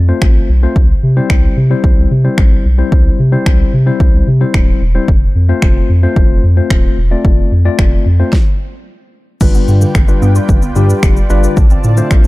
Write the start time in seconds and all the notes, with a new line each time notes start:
Already playing: F2
0.08 A3 C4 F4 C5
0.22 A1, finger snap, kick
0.49 B1
0.63 A3 C4 F4 C5
0.76 C2, kick
1.03 C3
1.17 G3 C4 E4 C5
1.30 C2, finger snap, kick
1.57 C3
1.70 G3 C4 E4 C5
1.84 C2, kick
1.97 C2
2.11 C3
2.24 G3 C4 E4 C5
2.38 A1, finger snap, kick
2.65 B1
2.78 G3 C4 E4 C5
2.92 C2, kick
3.19 C3
3.32 G3 C4 E4 C5
3.46 C2, finger snap, kick
3.73 C3
3.86 G3 C4 E4 C5
4.00 C2, kick
4.14 C2
4.27 C3
4.41 G3 C4 E4 C5
4.54 D1, finger snap, kick
4.81 E1
4.95 G3 C4 E4 C5
5.08 F1, kick
5.35 F2
5.49 A3 C4 F4 C5
5.62 F1, finger snap, kick
5.89 F2
6.03 A3 C4 F4 C5
6.16 F1, kick
6.30 F1
6.43 F2
6.57 A3 C4 F4 C5
6.70 D1, finger snap, kick
6.98 E1
7.11 A3 C4 F4 D5
7.25 F1, kick
7.52 F2
7.65 A3 C4 F4 D5
7.79 F1, finger snap, kick
8.06 F2
8.19 A3 C4 F4 C5
8.33 kick, snare
9.41 G1 D3 G3 D4 F4 B4 D5 G5, kick, crash, shaker
9.54 B3, shaker
9.68 G2 D3, shaker
9.81 D3, shaker
9.95 G1 D3, finger snap, kick, shaker
10.08 G3 D4 F4 B4, shaker
10.22 G2 B3, shaker
10.35 F4, shaker
10.49 G1 D3, kick, shaker
10.62 G1 B3, shaker
10.76 G2 D3 G3 D4 F4 G4, shaker
10.90 D3, shaker
11.03 F1 D3, finger snap, kick, shaker
11.17 G3, shaker
11.30 G1 G3 D4 F4 B4 D5, shaker
11.44 D3, shaker
11.57 A1 D3 C4 F4 A5, kick, shaker
11.70 C4, shaker
11.84 A2 D3, shaker
11.97 D3 A3 D4 F4 C5, shaker
12.11 A1 D3, finger snap, kick, shaker